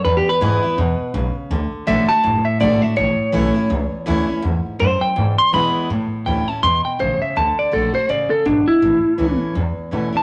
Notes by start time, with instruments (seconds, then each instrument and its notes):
0.05 upright bass E2, steel-string acoustic guitar E2, clean electric guitar B4
0.17 clean electric guitar G4
0.26 clean electric guitar B4, muted upright bass stroke
0.41 upright bass G#2, steel-string acoustic guitar E3 G#3 B3 E4
0.63 steel-string acoustic guitar B3 E4, muted upright bass stroke
0.78 upright bass E2, steel-string acoustic guitar B2
0.99 muted upright bass stroke
1.14 upright bass B1, steel-string acoustic guitar C#3
1.35 muted upright bass stroke
1.50 upright bass D2, steel-string acoustic guitar D3
1.72 muted upright bass stroke
1.87 upright bass A1, steel-string acoustic guitar D3 A3 D4 F#4, clean electric guitar E5
2.08 steel-string acoustic guitar D4 F#4, clean electric guitar A5, muted upright bass stroke
2.24 upright bass F#1, steel-string acoustic guitar A2
2.45 clean electric guitar E5, muted upright bass stroke
2.60 upright bass G#1, steel-string acoustic guitar D3 A3 D4 F#4, clean electric guitar D5
2.81 steel-string acoustic guitar D4 F#4, clean electric guitar E5, muted upright bass stroke
2.96 upright bass A1, steel-string acoustic guitar A2, clean electric guitar C#5
3.19 muted upright bass stroke
3.32 upright bass B1, steel-string acoustic guitar E3 A3 C#4 E4
3.54 steel-string acoustic guitar C#4 E4, muted upright bass stroke
3.70 upright bass C#2, steel-string acoustic guitar E2
3.92 muted upright bass stroke
4.06 upright bass D2, steel-string acoustic guitar E3 A3 C#4 E4
4.27 steel-string acoustic guitar C#4 E4, muted upright bass stroke
4.42 upright bass E2, steel-string acoustic guitar G#2
4.66 muted upright bass stroke
4.79 steel-string acoustic guitar F#2, upright bass F#2, clean electric guitar C5
5.01 clean electric guitar G5, muted upright bass stroke
5.16 steel-string acoustic guitar E2, upright bass G#2
5.38 clean electric guitar C6, muted upright bass stroke
5.53 upright bass B2, steel-string acoustic guitar E3 G#3 B3 E4, clean electric guitar B5
5.75 muted upright bass stroke
5.90 upright bass A2, steel-string acoustic guitar A2
6.12 muted upright bass stroke
6.26 upright bass D2, steel-string acoustic guitar E3 A3 C#4 E4, clean electric guitar G5
6.47 steel-string acoustic guitar C#4 E4, clean electric guitar A5
6.63 upright bass E2, steel-string acoustic guitar B2, clean electric guitar C6
6.85 clean electric guitar G5, muted upright bass stroke
6.99 upright bass A1, steel-string acoustic guitar C#3, clean electric guitar C5
7.22 clean electric guitar E5, muted upright bass stroke
7.36 upright bass D2, steel-string acoustic guitar D3, clean electric guitar A5
7.58 clean electric guitar D5, muted upright bass stroke
7.71 upright bass A#1, steel-string acoustic guitar D3 A3 D4 F#4, clean electric guitar A4
7.94 steel-string acoustic guitar D4 F#4, clean electric guitar C5
8.09 upright bass A1, steel-string acoustic guitar C#3, clean electric guitar D5
8.30 clean electric guitar A4
8.45 upright bass G#1, steel-string acoustic guitar B2, clean electric guitar D4
8.68 clean electric guitar E4, muted upright bass stroke
8.82 upright bass A1, steel-string acoustic guitar A2
9.03 muted upright bass stroke
9.18 upright bass C#2, steel-string acoustic guitar E3 A3 C#4 E4
9.55 steel-string acoustic guitar E2, upright bass E2
9.77 muted upright bass stroke
9.91 upright bass B2, steel-string acoustic guitar E3 A3 C#4 E4
10.12 steel-string acoustic guitar C#4 E4, muted upright bass stroke
10.17 clean electric guitar A5